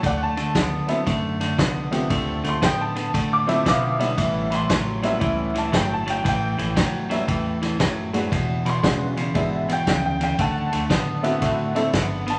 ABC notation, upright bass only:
X:1
M:4/4
L:1/8
Q:"Swing" 1/4=116
K:D
V:1 name="Upright bass" clef=bass
D,,2 D,,2 F,,2 =C,,2 | D,, D,, A,,2 A,,2 B,,2 | A,,,2 A,,,2 C,,2 G,,,2 | A,,, A,,, E,,2 E,,2 F,,2 |
E,,,2 E,,,2 ^G,,,2 D,,2 | D,, D,, A,,2 A,,2 G,,,2 |]